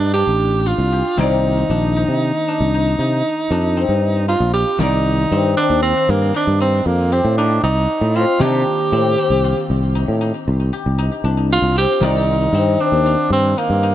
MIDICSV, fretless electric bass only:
0, 0, Header, 1, 2, 480
1, 0, Start_track
1, 0, Key_signature, -3, "minor"
1, 0, Tempo, 516351
1, 1096, Time_signature, 7, 2, 24, 8
1, 12966, End_track
2, 0, Start_track
2, 0, Title_t, "Fretless electric bass"
2, 0, Program_c, 0, 35
2, 0, Note_on_c, 0, 43, 80
2, 208, Note_off_c, 0, 43, 0
2, 253, Note_on_c, 0, 33, 67
2, 670, Note_off_c, 0, 33, 0
2, 728, Note_on_c, 0, 36, 76
2, 940, Note_off_c, 0, 36, 0
2, 1097, Note_on_c, 0, 36, 80
2, 1513, Note_off_c, 0, 36, 0
2, 1578, Note_on_c, 0, 34, 79
2, 1890, Note_off_c, 0, 34, 0
2, 1938, Note_on_c, 0, 48, 68
2, 2146, Note_off_c, 0, 48, 0
2, 2421, Note_on_c, 0, 36, 72
2, 2732, Note_off_c, 0, 36, 0
2, 2777, Note_on_c, 0, 48, 70
2, 2986, Note_off_c, 0, 48, 0
2, 3259, Note_on_c, 0, 41, 74
2, 3571, Note_off_c, 0, 41, 0
2, 3614, Note_on_c, 0, 43, 66
2, 4033, Note_off_c, 0, 43, 0
2, 4093, Note_on_c, 0, 34, 74
2, 4304, Note_off_c, 0, 34, 0
2, 4453, Note_on_c, 0, 36, 89
2, 4871, Note_off_c, 0, 36, 0
2, 4941, Note_on_c, 0, 43, 88
2, 5148, Note_off_c, 0, 43, 0
2, 5298, Note_on_c, 0, 39, 70
2, 5506, Note_off_c, 0, 39, 0
2, 5661, Note_on_c, 0, 43, 82
2, 5867, Note_off_c, 0, 43, 0
2, 6017, Note_on_c, 0, 43, 77
2, 6329, Note_off_c, 0, 43, 0
2, 6376, Note_on_c, 0, 41, 85
2, 6688, Note_off_c, 0, 41, 0
2, 6735, Note_on_c, 0, 45, 86
2, 7047, Note_off_c, 0, 45, 0
2, 7097, Note_on_c, 0, 36, 89
2, 7304, Note_off_c, 0, 36, 0
2, 7449, Note_on_c, 0, 45, 87
2, 7659, Note_off_c, 0, 45, 0
2, 7812, Note_on_c, 0, 48, 103
2, 8021, Note_off_c, 0, 48, 0
2, 8296, Note_on_c, 0, 45, 82
2, 8502, Note_off_c, 0, 45, 0
2, 8647, Note_on_c, 0, 36, 69
2, 8857, Note_off_c, 0, 36, 0
2, 9017, Note_on_c, 0, 36, 77
2, 9327, Note_off_c, 0, 36, 0
2, 9374, Note_on_c, 0, 45, 80
2, 9581, Note_off_c, 0, 45, 0
2, 9739, Note_on_c, 0, 36, 81
2, 9944, Note_off_c, 0, 36, 0
2, 10096, Note_on_c, 0, 36, 75
2, 10302, Note_off_c, 0, 36, 0
2, 10448, Note_on_c, 0, 36, 89
2, 10762, Note_off_c, 0, 36, 0
2, 10804, Note_on_c, 0, 36, 86
2, 11015, Note_off_c, 0, 36, 0
2, 11170, Note_on_c, 0, 36, 104
2, 11588, Note_off_c, 0, 36, 0
2, 11645, Note_on_c, 0, 43, 86
2, 11857, Note_off_c, 0, 43, 0
2, 12012, Note_on_c, 0, 39, 76
2, 12221, Note_off_c, 0, 39, 0
2, 12367, Note_on_c, 0, 43, 94
2, 12579, Note_off_c, 0, 43, 0
2, 12733, Note_on_c, 0, 43, 84
2, 12966, Note_off_c, 0, 43, 0
2, 12966, End_track
0, 0, End_of_file